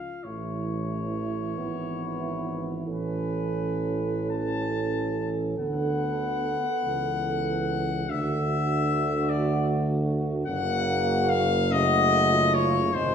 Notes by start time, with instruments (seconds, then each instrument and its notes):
Already playing: euphonium F4, cornet F5
0.24 tuba A1, euphonium E3 A3, french horn section E4, cornet C#5
1.58 tuba G#1, euphonium B3
2.87 tuba A1, euphonium C#4, french horn section A4, cornet B4
4.31 cornet A5
5.58 tuba D2, euphonium D3 B3, cornet F#5
6.83 tuba C#2, euphonium E3
8.08 tuba D2, euphonium D3 A3, french horn section F#4, cornet E5
9.29 cornet D5
10.46 tuba F#1, euphonium C#3 A#3, french horn section F#4, cornet F#5
11.29 cornet F5
11.72 euphonium C#3 A3, french horn section F#4, cornet D#5
12.33 french horn section F4
12.54 cornet C#5
12.94 tuba G#1, euphonium C3 G#3, french horn section D#4, cornet C5